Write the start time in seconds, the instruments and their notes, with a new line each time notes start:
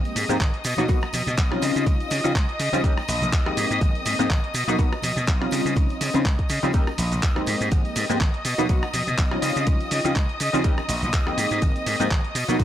Already playing: analog polysynth G#3 A#3 C4 D#4 G4, string section D#5 D#6
0.05 muted slap bass stroke, closed hi-hat, tambourine
0.16 slap bass G#2, open hi-hat, ride, tambourine, shaker
0.28 slap bass G#2, analog polysynth G#3 A#3 C4 D#4 G4, closed hi-hat, tambourine, high conga, shaker
0.39 slap bass G#1, kick, clap, closed hi-hat, ride, tambourine, shaker
0.54 closed hi-hat
0.64 slap bass B2, open hi-hat, ride, tambourine, shaker
0.77 slap bass B2, analog polysynth F#3 A#3 B3 D#4 F#4, closed hi-hat, tambourine, high conga, shaker
0.88 slap bass B1, analog polysynth F#3 A#3 B3 D#4 F#4, kick, closed hi-hat, ride, tambourine, shaker
1.01 muted slap bass stroke, cross-stick, tambourine
1.13 slap bass B2, open hi-hat, ride, tambourine, high conga, shaker
1.27 slap bass B2, closed hi-hat, tambourine, low conga, shaker
1.37 slap bass B1, kick, clap, closed hi-hat, ride, tambourine, shaker
1.50 analog polysynth G3 C4 C#4 D#4 F4, cross-stick, high conga
1.62 slap bass C#3, open hi-hat, ride, tambourine, shaker
1.76 slap bass C#3, closed hi-hat, tambourine, shaker
1.86 slap bass C#2, kick, closed hi-hat, ride, tambourine, high conga, shaker
2.00 muted slap bass stroke, closed hi-hat, tambourine
2.10 slap bass C#3, open hi-hat, ride, tambourine, shaker
2.24 slap bass C#3, analog polysynth G3 C4 C#4 D#4 F4, closed hi-hat, tambourine, high conga, shaker
2.35 slap bass C#2, kick, clap, closed hi-hat, ride, tambourine, shaker
2.49 closed hi-hat
2.59 slap bass C#3, open hi-hat, ride, tambourine, shaker
2.72 slap bass C#3, analog polysynth G3 C4 C#4 D#4 F4, closed hi-hat, tambourine, high conga, shaker
2.84 slap bass D#2, analog polysynth G3 A#3 C#4 D#4 G4, kick, closed hi-hat, ride, tambourine, shaker
2.97 muted slap bass stroke, cross-stick, tambourine
3.08 slap bass A#1, open hi-hat, ride, tambourine, high conga, shaker
3.22 slap bass A#1, closed hi-hat, tambourine, low conga, shaker
3.33 slap bass D#2, kick, clap, closed hi-hat, ride, tambourine, shaker
3.46 analog polysynth G#3 A#3 C4 D#4 G4, cross-stick, high conga
3.57 slap bass G#2, open hi-hat, ride, tambourine, shaker
3.70 slap bass G#2, closed hi-hat, tambourine, shaker
3.81 slap bass G#1, kick, closed hi-hat, ride, tambourine, high conga, shaker
3.95 muted slap bass stroke, closed hi-hat, tambourine
4.05 slap bass G#2, open hi-hat, ride, tambourine, shaker
4.19 slap bass G#2, analog polysynth G#3 A#3 C4 D#4 G4, closed hi-hat, tambourine, high conga, shaker
4.30 slap bass G#1, kick, clap, closed hi-hat, ride, tambourine, shaker
4.44 closed hi-hat
4.54 slap bass B2, open hi-hat, ride, tambourine, shaker
4.68 slap bass B2, analog polysynth F#3 A#3 B3 D#4 F#4, closed hi-hat, tambourine, high conga, shaker
4.78 slap bass B1, analog polysynth F#3 A#3 B3 D#4 F#4, kick, closed hi-hat, ride, tambourine, shaker
4.92 muted slap bass stroke, cross-stick, tambourine
5.02 slap bass B2, open hi-hat, ride, tambourine, high conga, shaker
5.16 slap bass B2, closed hi-hat, tambourine, low conga, shaker
5.27 slap bass B1, kick, clap, closed hi-hat, ride, tambourine, shaker
5.40 analog polysynth G3 C4 C#4 D#4 F4, cross-stick, high conga
5.51 slap bass C#3, open hi-hat, ride, tambourine, shaker
5.65 slap bass C#3, closed hi-hat, tambourine, shaker
5.76 slap bass C#2, kick, closed hi-hat, ride, tambourine, high conga, shaker
5.89 closed hi-hat, tambourine
6.01 slap bass C#3, open hi-hat, ride, tambourine, shaker
6.13 slap bass C#3, analog polysynth G3 C4 C#4 D#4 F4, closed hi-hat, tambourine, high conga, shaker
6.24 slap bass C#2, kick, clap, closed hi-hat, ride, tambourine, shaker
6.39 kick, closed hi-hat
6.49 slap bass C#3, open hi-hat, ride, tambourine, shaker
6.63 slap bass C#3, analog polysynth G3 C4 C#4 D#4 F4, closed hi-hat, tambourine, high conga, shaker
6.73 slap bass D#2, analog polysynth G3 A#3 C#4 D#4 G4, string section D#5 D#6, kick, closed hi-hat, ride, tambourine, shaker
6.87 muted slap bass stroke, cross-stick, tambourine
6.98 slap bass A#1, open hi-hat, ride, tambourine, high conga, shaker
7.11 slap bass A#1, closed hi-hat, tambourine, low conga, shaker
7.22 kick, clap, closed hi-hat, ride, tambourine, shaker
7.35 analog polysynth G#3 A#3 C4 D#4 G4, cross-stick, high conga
7.46 slap bass G#2, open hi-hat, ride, tambourine, shaker
7.61 slap bass G#2, closed hi-hat, tambourine, shaker
7.71 slap bass G#1, kick, closed hi-hat, ride, tambourine, high conga, shaker
7.85 muted slap bass stroke, closed hi-hat, tambourine
7.96 slap bass G#2, open hi-hat, ride, tambourine, shaker
8.09 slap bass G#2, analog polysynth G#3 A#3 C4 D#4 G4, closed hi-hat, tambourine, high conga, shaker
8.20 slap bass G#1, kick, clap, closed hi-hat, ride, tambourine, shaker
8.34 closed hi-hat
8.45 slap bass B2, open hi-hat, ride, tambourine, shaker
8.58 slap bass B2, analog polysynth F#3 A#3 B3 D#4 F#4, closed hi-hat, tambourine, high conga, shaker
8.69 slap bass B1, analog polysynth F#3 A#3 B3 D#4 F#4, kick, closed hi-hat, ride, tambourine, shaker
8.83 cross-stick, tambourine
8.93 slap bass B2, open hi-hat, ride, tambourine, high conga, shaker
9.07 slap bass B2, closed hi-hat, tambourine, low conga, shaker
9.18 slap bass B1, kick, clap, closed hi-hat, ride, tambourine, shaker
9.31 analog polysynth G3 C4 C#4 D#4 F4, cross-stick, high conga
9.42 slap bass C#3, open hi-hat, ride, tambourine, shaker
9.56 slap bass C#3, closed hi-hat, tambourine, shaker
9.66 slap bass C#2, kick, closed hi-hat, ride, tambourine, high conga, shaker
9.80 muted slap bass stroke, closed hi-hat, tambourine
9.91 slap bass C#3, open hi-hat, ride, tambourine, shaker
10.04 slap bass C#3, analog polysynth G3 C4 C#4 D#4 F4, closed hi-hat, tambourine, high conga, shaker
10.15 slap bass C#2, kick, clap, closed hi-hat, ride, tambourine, shaker
10.29 closed hi-hat
10.40 slap bass C#3, open hi-hat, ride, tambourine, shaker
10.53 slap bass C#3, analog polysynth G3 C4 C#4 D#4 F4, closed hi-hat, tambourine, high conga, shaker
10.64 slap bass D#2, analog polysynth G3 A#3 C#4 D#4 G4, kick, closed hi-hat, ride, tambourine, shaker
10.78 muted slap bass stroke, cross-stick, tambourine
10.88 slap bass A#1, open hi-hat, ride, tambourine, high conga, shaker
11.02 slap bass A#1, closed hi-hat, tambourine, low conga, shaker
11.13 slap bass D#2, kick, clap, closed hi-hat, ride, tambourine, shaker
11.26 analog polysynth G#3 A#3 C4 D#4 G4, cross-stick, high conga
11.38 slap bass G#2, open hi-hat, ride, tambourine, shaker
11.50 slap bass G#2, closed hi-hat, tambourine, shaker
11.61 slap bass G#1, kick, closed hi-hat, ride, tambourine, high conga, shaker
11.76 muted slap bass stroke, closed hi-hat, tambourine
11.86 slap bass G#2, open hi-hat, ride, tambourine, shaker
12.00 slap bass G#2, analog polysynth G#3 A#3 C4 D#4 G4, closed hi-hat, tambourine, high conga, shaker
12.11 slap bass G#1, kick, clap, closed hi-hat, ride, tambourine, shaker
12.24 closed hi-hat
12.35 slap bass B2, open hi-hat, ride, tambourine, shaker
12.48 slap bass B2, analog polysynth F#3 A#3 B3 D#4 F#4, closed hi-hat, tambourine, high conga, shaker
12.59 slap bass B1, analog polysynth A#3 B3 D#4 F#4, kick, closed hi-hat, ride, tambourine, shaker